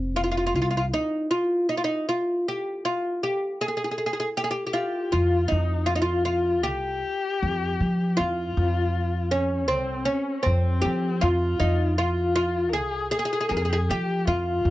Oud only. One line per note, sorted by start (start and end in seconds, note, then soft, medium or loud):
0.00 0.19 C4 medium
0.16 0.22 F4 medium
0.24 0.30 F4 medium
0.32 0.36 F4 medium
0.37 0.45 F4 medium
0.47 0.54 F4 medium
0.56 0.61 F4 medium
0.62 0.69 F4 medium
0.71 0.76 F4 medium
0.77 0.84 F4 medium
0.94 1.30 D#4 medium
1.31 1.69 F4 medium
1.69 1.76 D#4 medium
1.77 1.84 F4 medium
1.84 2.08 D#4 medium
2.09 2.48 F4 medium
2.48 2.85 G4 medium
2.85 3.23 F4 medium
3.23 3.61 G4 medium
3.61 3.67 G#4 medium
3.68 3.76 G#4 medium
3.77 3.83 G#4 medium
3.84 3.90 G#4 soft
3.91 3.97 G#4 medium
3.98 4.05 G#4 medium
4.06 4.12 G#4 medium
4.13 4.19 G#4 medium
4.20 4.28 G#4 medium
4.37 4.44 G4 medium
4.44 4.50 G#4 medium
4.51 4.65 G4 medium
4.67 4.72 G4 medium
4.73 5.10 F4 medium
4.73 5.10 G4 medium
5.12 5.48 F4 medium
5.48 5.86 D#4 medium
5.86 5.95 F4 medium
5.96 6.01 D#4 medium
6.02 6.24 F4 medium
6.25 6.63 F4 medium
6.63 8.16 G4 medium
8.17 9.31 F4 medium
9.31 9.68 C#4 medium
9.68 10.05 C4 medium
10.05 10.42 C#4 medium
10.43 10.81 C4 medium
10.82 11.21 G4 medium
11.21 11.59 F4 medium
11.60 11.98 D#4 medium
11.98 12.34 F4 loud
12.36 12.73 F4 medium
12.73 13.10 G#4 loud
13.11 13.18 G#4 loud
13.19 13.24 G#4 medium
13.25 13.32 G#4 medium
13.33 13.39 G#4 medium
13.41 13.48 G#4 medium
13.49 13.56 G#4 medium
13.57 13.64 G#4 medium
13.65 13.72 G#4 medium
13.73 13.80 G#4 medium
13.91 14.27 G4 medium
14.27 14.70 F4 medium